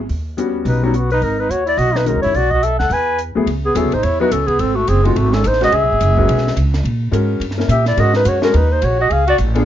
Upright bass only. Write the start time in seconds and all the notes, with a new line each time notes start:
0.09 D#2
0.65 B1
1.22 G#1
1.49 D#2
1.77 B1
2.16 D#2
2.25 F#2
2.35 B1
2.80 D2
2.90 E2
3.36 muted upright bass stroke
3.46 C#2
3.75 D#2
3.85 C#2
3.93 A1
4.03 E2
4.31 C#2
4.59 G#1
4.88 F#1
5.16 G#1
5.45 A1
5.72 C#2
5.83 B1
5.92 G#1
6.01 F#1
6.28 B1
6.56 C#2
6.83 A#2
7.12 G#2
7.40 G2
7.68 A#2
7.97 G#2
8.25 F#2
8.54 D#2
8.82 A#1
9.10 C#2
9.39 A1